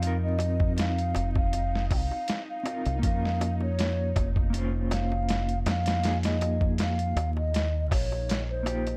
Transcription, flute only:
Already playing: F5
0.23 D#5
0.78 F5
1.37 F5
1.93 G5
1.97 F5
2.50 F5
3.04 F5
3.62 C#5
4.91 F5
5.68 F5
6.24 D#5
6.81 F5
7.37 D#5
7.91 C#5
8.50 C5

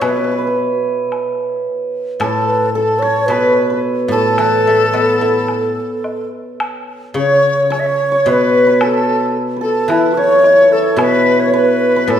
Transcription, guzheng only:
0.01 B2
2.20 A2
3.28 B2
4.08 A2
4.38 E3
4.67 A3
4.93 B3
5.21 E4
7.14 C#3
8.26 B2
9.88 E3
10.96 B2
12.07 A2

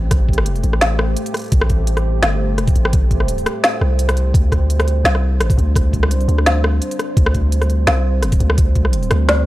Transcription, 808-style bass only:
Already playing: A1
0.64 A1
1.52 A1
2.22 G1
2.75 A1
3.81 C2
4.34 D2
5.04 C2
5.58 D2
6.07 C#2
6.28 D2
7.17 D2
7.87 C2
8.40 D2
9.11 D2

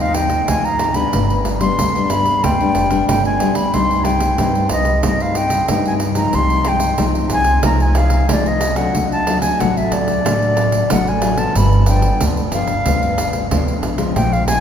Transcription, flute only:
0.00 F5
0.14 G5
0.48 G#5
0.65 A#5
0.95 B5
1.61 C6
2.10 B5
2.44 G5
3.09 G5
3.26 G#5
3.55 B5
3.74 C6
4.04 G5
4.72 D#5
5.06 D#5
5.22 F5
5.37 G5
5.71 G5
5.87 G#5
6.17 A#5
6.35 C6
6.68 G5
7.33 G#5
7.65 A#5
7.82 G#5
7.97 F5
8.31 D5
8.47 D#5
8.76 F#5
9.12 A5
9.41 G#5
9.60 F#5
9.77 E5
9.93 D5
10.92 F#5
11.09 G#5
11.38 A5
11.57 B5
11.89 G5
12.53 F5
14.15 G5
14.33 F5
14.47 G#5

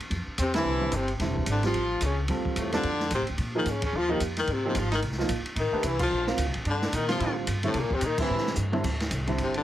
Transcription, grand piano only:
0.54 D3 G3 C4 E4
0.81 D3 G3 C4 E4
1.19 D3 G3 C4 E4
1.63 G3 C4 F4 G4
2.29 G3 C4 F4 A4
2.73 G3 C4 F4 A4
3.55 F3 A#3 D#4 G#4
4.09 F3 A#3 D#4 G4
4.65 F3 A#3 D#4 G4
5.18 F3 A#3 D#4 F4
5.73 A3 D4 G4 B4
6.27 C4 F4 A#4 F5
7.08 D3 G3 C4 F4
7.63 D3 G3 C4 E4
8.18 D3 G3 C4 E4
8.72 D3 G3 C4 E4
9.27 D3 G3 C4 E4

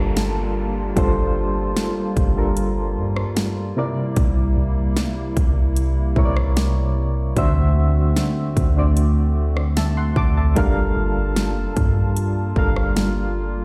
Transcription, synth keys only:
Already playing: G3 D4 F4 A4 A#4
0.96 G3 D4 F4 A4 C5
2.36 G3 D4 F4 A4 A#4
3.76 C3 C4 E4 A#4 D5
6.16 C3 C4 E4 A#4 C#5
6.25 D5
7.36 D3 D4 F#4 C5 E5
8.76 D3 D4 F#4 C5 D5
9.77 E5 A5
9.97 F#5 C6
10.17 A5 D6
10.37 E5 A5
10.55 G3 D4 A4 A#4 F5
12.56 G3 D4 A4 A#4 F5

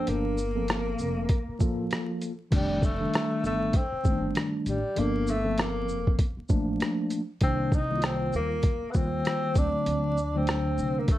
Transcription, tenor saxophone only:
0.08 A#3
2.56 G3
2.85 A3
3.46 A3
3.76 C4
4.69 G3
4.99 A#3
5.30 A3
5.61 A#3
7.43 C4
7.74 D#4
8.05 C4
8.36 A#3
8.91 B3
8.96 C4
9.58 D4
10.37 C4
10.98 A#3
11.12 A3

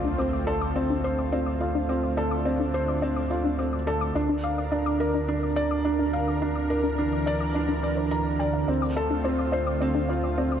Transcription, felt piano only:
Already playing: C4 F4
0.18 C4
0.47 A4
0.76 C4
1.04 C5
1.32 C4
1.60 F4
1.89 C4
2.17 A4
2.45 C4
2.74 C5
3.02 C4
3.30 F4
3.59 C4
3.87 A4
4.15 D4
4.44 F5
4.71 D4
5.00 A#4
5.28 D4
5.56 D5
5.85 D4
6.13 F5
6.42 D4
6.70 A#4
6.99 D4
7.27 D5
7.55 D4
7.83 D5
8.11 A#5
8.40 D5
8.69 C4
8.97 A4
9.25 C4
9.53 C5
9.82 C4
10.10 F4
10.38 C4

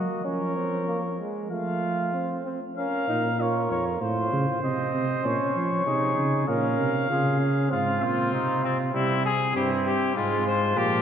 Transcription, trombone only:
Already playing: A#3
0.25 C#4
0.56 C4
0.88 A#3
1.19 G#3
1.51 A3
2.14 C4
2.46 C4
2.77 C#4
3.08 D#4
3.39 F4
4.01 F4
4.63 C4
5.25 C#4
5.87 D#4
6.48 C#4
7.10 F4
7.41 C#4
7.71 C4
8.94 G3
9.56 C4
10.16 G#3
10.77 F3

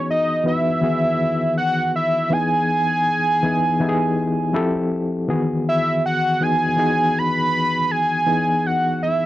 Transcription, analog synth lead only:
0.11 D#5
0.48 E5
1.58 F#5
1.96 E5
2.33 G#5
5.69 E5
6.06 F#5
6.43 G#5
7.18 B5
7.91 G#5
8.66 F#5
9.03 E5

